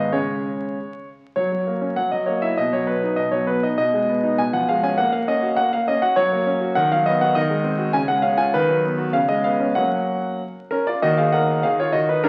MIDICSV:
0, 0, Header, 1, 2, 480
1, 0, Start_track
1, 0, Key_signature, 6, "major"
1, 0, Tempo, 619835
1, 104, Time_signature, 2, 2, 24, 8
1, 1063, Tempo, 602410
1, 3463, Tempo, 591133
1, 6823, Tempo, 625000
1, 8743, Tempo, 604839
1, 9747, End_track
2, 0, Start_track
2, 0, Title_t, "Grand piano"
2, 0, Program_c, 0, 0
2, 0, Control_c, 0, 64, 127
2, 0, Note_on_c, 0, 44, 53
2, 0, Note_on_c, 0, 51, 41
2, 0, Note_on_c, 0, 56, 42
2, 0, Note_on_c, 0, 59, 41
2, 0, Note_on_c, 0, 75, 64
2, 0, Note_on_c, 0, 77, 70
2, 86, Note_off_c, 0, 44, 0
2, 96, Note_on_c, 0, 61, 39
2, 96, Note_on_c, 0, 73, 68
2, 97, Note_on_c, 0, 49, 48
2, 98, Note_off_c, 0, 56, 0
2, 98, Note_on_c, 0, 56, 39
2, 103, Note_off_c, 0, 75, 0
2, 113, Control_c, 0, 64, 0
2, 116, Note_off_c, 0, 51, 0
2, 118, Note_off_c, 0, 77, 0
2, 122, Note_off_c, 0, 59, 0
2, 247, Control_c, 0, 64, 127
2, 436, Note_off_c, 0, 49, 0
2, 484, Note_off_c, 0, 61, 0
2, 485, Note_off_c, 0, 56, 0
2, 591, Control_c, 0, 64, 0
2, 821, Note_off_c, 0, 73, 0
2, 1052, Note_on_c, 0, 73, 62
2, 1056, Note_on_c, 0, 54, 47
2, 1170, Note_off_c, 0, 54, 0
2, 1182, Note_on_c, 0, 54, 33
2, 1211, Control_c, 0, 64, 127
2, 1298, Note_on_c, 0, 58, 35
2, 1376, Note_off_c, 0, 54, 0
2, 1414, Note_on_c, 0, 61, 37
2, 1494, Note_off_c, 0, 58, 0
2, 1534, Note_on_c, 0, 78, 65
2, 1538, Note_on_c, 0, 54, 46
2, 1539, Note_off_c, 0, 61, 0
2, 1539, Note_off_c, 0, 73, 0
2, 1555, Control_c, 0, 64, 0
2, 1645, Note_off_c, 0, 54, 0
2, 1655, Note_on_c, 0, 75, 60
2, 1657, Note_on_c, 0, 54, 34
2, 1659, Note_off_c, 0, 78, 0
2, 1711, Control_c, 0, 64, 127
2, 1771, Note_on_c, 0, 73, 47
2, 1780, Note_off_c, 0, 75, 0
2, 1780, Note_on_c, 0, 58, 38
2, 1853, Note_off_c, 0, 54, 0
2, 1897, Note_on_c, 0, 76, 60
2, 1898, Note_off_c, 0, 73, 0
2, 1899, Note_on_c, 0, 64, 39
2, 1975, Note_off_c, 0, 58, 0
2, 2021, Note_off_c, 0, 76, 0
2, 2021, Note_on_c, 0, 75, 71
2, 2023, Note_off_c, 0, 64, 0
2, 2028, Note_on_c, 0, 47, 51
2, 2035, Control_c, 0, 64, 0
2, 2142, Note_on_c, 0, 54, 34
2, 2143, Note_on_c, 0, 73, 58
2, 2144, Note_off_c, 0, 75, 0
2, 2181, Control_c, 0, 64, 127
2, 2256, Note_on_c, 0, 71, 56
2, 2259, Note_on_c, 0, 59, 36
2, 2265, Note_off_c, 0, 73, 0
2, 2336, Note_off_c, 0, 54, 0
2, 2384, Note_on_c, 0, 63, 41
2, 2455, Note_off_c, 0, 59, 0
2, 2482, Note_off_c, 0, 47, 0
2, 2489, Note_on_c, 0, 75, 68
2, 2494, Note_on_c, 0, 47, 42
2, 2501, Note_off_c, 0, 71, 0
2, 2518, Control_c, 0, 64, 0
2, 2577, Note_off_c, 0, 63, 0
2, 2610, Note_on_c, 0, 73, 59
2, 2613, Note_on_c, 0, 54, 36
2, 2617, Note_off_c, 0, 75, 0
2, 2734, Note_on_c, 0, 71, 59
2, 2737, Note_on_c, 0, 59, 39
2, 2738, Note_off_c, 0, 73, 0
2, 2811, Note_off_c, 0, 54, 0
2, 2860, Note_off_c, 0, 71, 0
2, 2864, Note_on_c, 0, 75, 62
2, 2865, Note_on_c, 0, 63, 40
2, 2933, Note_off_c, 0, 59, 0
2, 2965, Note_off_c, 0, 47, 0
2, 2967, Note_off_c, 0, 75, 0
2, 2979, Note_on_c, 0, 75, 74
2, 2985, Note_off_c, 0, 63, 0
2, 2985, Note_on_c, 0, 47, 56
2, 3104, Note_on_c, 0, 56, 38
2, 3160, Control_c, 0, 64, 127
2, 3228, Note_on_c, 0, 59, 39
2, 3296, Note_off_c, 0, 56, 0
2, 3342, Note_on_c, 0, 63, 43
2, 3417, Note_off_c, 0, 59, 0
2, 3449, Note_off_c, 0, 47, 0
2, 3460, Note_off_c, 0, 75, 0
2, 3462, Note_off_c, 0, 63, 0
2, 3462, Note_on_c, 0, 47, 51
2, 3463, Note_on_c, 0, 80, 76
2, 3469, Control_c, 0, 64, 0
2, 3583, Note_on_c, 0, 53, 41
2, 3583, Note_on_c, 0, 78, 70
2, 3584, Note_off_c, 0, 80, 0
2, 3613, Control_c, 0, 64, 127
2, 3705, Note_off_c, 0, 78, 0
2, 3708, Note_on_c, 0, 77, 74
2, 3712, Note_on_c, 0, 56, 42
2, 3777, Note_off_c, 0, 53, 0
2, 3826, Note_on_c, 0, 61, 46
2, 3827, Note_off_c, 0, 77, 0
2, 3829, Note_on_c, 0, 80, 74
2, 3901, Note_off_c, 0, 56, 0
2, 3931, Note_off_c, 0, 47, 0
2, 3944, Note_on_c, 0, 78, 83
2, 3946, Note_off_c, 0, 61, 0
2, 3948, Note_off_c, 0, 80, 0
2, 3950, Note_on_c, 0, 58, 58
2, 3951, Control_c, 0, 64, 0
2, 4053, Note_off_c, 0, 58, 0
2, 4064, Note_on_c, 0, 77, 69
2, 4065, Note_off_c, 0, 78, 0
2, 4065, Note_on_c, 0, 58, 42
2, 4100, Control_c, 0, 64, 127
2, 4186, Note_off_c, 0, 77, 0
2, 4190, Note_on_c, 0, 75, 74
2, 4191, Note_on_c, 0, 61, 43
2, 4258, Note_off_c, 0, 58, 0
2, 4309, Note_on_c, 0, 66, 45
2, 4382, Note_off_c, 0, 61, 0
2, 4421, Note_on_c, 0, 78, 87
2, 4426, Note_on_c, 0, 58, 51
2, 4429, Note_off_c, 0, 75, 0
2, 4436, Control_c, 0, 64, 0
2, 4501, Note_off_c, 0, 66, 0
2, 4542, Note_off_c, 0, 58, 0
2, 4545, Note_off_c, 0, 78, 0
2, 4554, Note_on_c, 0, 77, 76
2, 4555, Note_on_c, 0, 58, 45
2, 4671, Note_off_c, 0, 77, 0
2, 4675, Note_on_c, 0, 75, 76
2, 4683, Note_on_c, 0, 61, 48
2, 4743, Note_off_c, 0, 58, 0
2, 4791, Note_on_c, 0, 78, 78
2, 4792, Note_off_c, 0, 75, 0
2, 4796, Note_on_c, 0, 66, 48
2, 4867, Note_off_c, 0, 61, 0
2, 4905, Note_on_c, 0, 73, 89
2, 4908, Note_on_c, 0, 54, 64
2, 4909, Note_off_c, 0, 78, 0
2, 4912, Note_off_c, 0, 66, 0
2, 5035, Note_on_c, 0, 58, 44
2, 5071, Control_c, 0, 64, 127
2, 5153, Note_on_c, 0, 61, 46
2, 5223, Note_off_c, 0, 58, 0
2, 5269, Note_on_c, 0, 66, 49
2, 5341, Note_off_c, 0, 61, 0
2, 5372, Note_off_c, 0, 54, 0
2, 5385, Note_off_c, 0, 73, 0
2, 5386, Note_on_c, 0, 78, 90
2, 5388, Note_off_c, 0, 66, 0
2, 5393, Note_on_c, 0, 51, 64
2, 5397, Control_c, 0, 64, 0
2, 5506, Note_off_c, 0, 78, 0
2, 5518, Note_on_c, 0, 77, 85
2, 5521, Note_on_c, 0, 54, 47
2, 5566, Control_c, 0, 64, 127
2, 5632, Note_off_c, 0, 77, 0
2, 5635, Note_on_c, 0, 75, 84
2, 5642, Note_on_c, 0, 59, 49
2, 5705, Note_off_c, 0, 54, 0
2, 5750, Note_off_c, 0, 75, 0
2, 5759, Note_on_c, 0, 66, 51
2, 5759, Note_on_c, 0, 78, 80
2, 5825, Note_off_c, 0, 59, 0
2, 5853, Note_off_c, 0, 51, 0
2, 5871, Note_off_c, 0, 66, 0
2, 5871, Note_off_c, 0, 78, 0
2, 5872, Control_c, 0, 64, 0
2, 5872, Note_on_c, 0, 75, 95
2, 5879, Note_on_c, 0, 51, 67
2, 5989, Note_on_c, 0, 56, 48
2, 6016, Control_c, 0, 64, 127
2, 6105, Note_on_c, 0, 60, 47
2, 6177, Note_off_c, 0, 56, 0
2, 6223, Note_on_c, 0, 66, 51
2, 6294, Note_off_c, 0, 60, 0
2, 6334, Note_off_c, 0, 51, 0
2, 6341, Note_off_c, 0, 66, 0
2, 6344, Note_off_c, 0, 75, 0
2, 6344, Note_on_c, 0, 80, 92
2, 6347, Note_on_c, 0, 49, 68
2, 6352, Control_c, 0, 64, 0
2, 6462, Note_off_c, 0, 80, 0
2, 6464, Note_on_c, 0, 78, 79
2, 6470, Note_on_c, 0, 56, 47
2, 6507, Control_c, 0, 64, 127
2, 6579, Note_on_c, 0, 77, 81
2, 6582, Note_off_c, 0, 78, 0
2, 6586, Note_on_c, 0, 61, 47
2, 6657, Note_off_c, 0, 56, 0
2, 6700, Note_off_c, 0, 77, 0
2, 6703, Note_on_c, 0, 65, 50
2, 6703, Note_on_c, 0, 80, 87
2, 6776, Note_off_c, 0, 61, 0
2, 6810, Note_off_c, 0, 49, 0
2, 6823, Note_off_c, 0, 65, 0
2, 6823, Note_off_c, 0, 80, 0
2, 6829, Control_c, 0, 64, 0
2, 6835, Note_on_c, 0, 71, 85
2, 6837, Note_on_c, 0, 51, 66
2, 6950, Note_on_c, 0, 54, 45
2, 6969, Control_c, 0, 64, 127
2, 7065, Note_on_c, 0, 59, 44
2, 7129, Note_off_c, 0, 54, 0
2, 7174, Note_on_c, 0, 66, 47
2, 7246, Note_off_c, 0, 59, 0
2, 7282, Note_off_c, 0, 51, 0
2, 7290, Note_off_c, 0, 66, 0
2, 7291, Note_on_c, 0, 77, 83
2, 7294, Note_off_c, 0, 71, 0
2, 7294, Note_on_c, 0, 49, 59
2, 7298, Control_c, 0, 64, 0
2, 7408, Note_off_c, 0, 77, 0
2, 7409, Note_on_c, 0, 75, 73
2, 7412, Note_on_c, 0, 56, 44
2, 7426, Control_c, 0, 64, 127
2, 7528, Note_off_c, 0, 75, 0
2, 7528, Note_on_c, 0, 77, 77
2, 7530, Note_on_c, 0, 59, 42
2, 7602, Note_off_c, 0, 56, 0
2, 7652, Note_on_c, 0, 61, 44
2, 7724, Note_off_c, 0, 59, 0
2, 7760, Note_off_c, 0, 49, 0
2, 7761, Note_off_c, 0, 61, 0
2, 7767, Note_on_c, 0, 78, 76
2, 7772, Note_off_c, 0, 77, 0
2, 7772, Note_on_c, 0, 61, 43
2, 7773, Note_on_c, 0, 54, 52
2, 7776, Note_on_c, 0, 58, 41
2, 7778, Control_c, 0, 64, 0
2, 7916, Control_c, 0, 64, 127
2, 8115, Note_off_c, 0, 54, 0
2, 8164, Note_off_c, 0, 61, 0
2, 8165, Note_off_c, 0, 58, 0
2, 8259, Note_off_c, 0, 78, 0
2, 8268, Control_c, 0, 64, 0
2, 8500, Note_on_c, 0, 70, 64
2, 8511, Note_on_c, 0, 61, 47
2, 8619, Note_off_c, 0, 61, 0
2, 8622, Note_off_c, 0, 70, 0
2, 8625, Note_on_c, 0, 74, 66
2, 8641, Note_on_c, 0, 65, 46
2, 8742, Note_off_c, 0, 65, 0
2, 8742, Note_off_c, 0, 74, 0
2, 8744, Note_on_c, 0, 39, 53
2, 8744, Note_on_c, 0, 75, 88
2, 8745, Note_on_c, 0, 51, 64
2, 8749, Note_on_c, 0, 66, 67
2, 8858, Note_off_c, 0, 66, 0
2, 8863, Note_off_c, 0, 75, 0
2, 8866, Note_on_c, 0, 77, 70
2, 8876, Note_on_c, 0, 68, 57
2, 8884, Control_c, 0, 64, 127
2, 8974, Note_off_c, 0, 51, 0
2, 8977, Note_off_c, 0, 39, 0
2, 8982, Note_off_c, 0, 68, 0
2, 8982, Note_on_c, 0, 78, 73
2, 8985, Note_off_c, 0, 77, 0
2, 8986, Note_on_c, 0, 51, 47
2, 8992, Note_on_c, 0, 70, 54
2, 9211, Note_off_c, 0, 70, 0
2, 9218, Note_off_c, 0, 51, 0
2, 9223, Note_off_c, 0, 78, 0
2, 9226, Note_on_c, 0, 77, 82
2, 9232, Control_c, 0, 64, 0
2, 9234, Note_on_c, 0, 51, 52
2, 9238, Note_on_c, 0, 68, 62
2, 9342, Note_off_c, 0, 68, 0
2, 9344, Note_off_c, 0, 77, 0
2, 9357, Note_on_c, 0, 73, 73
2, 9365, Note_on_c, 0, 65, 55
2, 9454, Note_off_c, 0, 51, 0
2, 9459, Note_on_c, 0, 75, 77
2, 9466, Note_off_c, 0, 65, 0
2, 9466, Note_on_c, 0, 51, 52
2, 9470, Note_off_c, 0, 73, 0
2, 9471, Note_on_c, 0, 66, 56
2, 9578, Note_off_c, 0, 66, 0
2, 9581, Note_off_c, 0, 75, 0
2, 9589, Note_on_c, 0, 71, 68
2, 9602, Note_on_c, 0, 63, 53
2, 9696, Note_off_c, 0, 51, 0
2, 9704, Note_off_c, 0, 63, 0
2, 9705, Note_off_c, 0, 71, 0
2, 9706, Note_on_c, 0, 70, 84
2, 9709, Note_on_c, 0, 38, 55
2, 9709, Note_on_c, 0, 50, 67
2, 9714, Note_on_c, 0, 62, 61
2, 9747, Note_off_c, 0, 38, 0
2, 9747, Note_off_c, 0, 50, 0
2, 9747, Note_off_c, 0, 62, 0
2, 9747, Note_off_c, 0, 70, 0
2, 9747, End_track
0, 0, End_of_file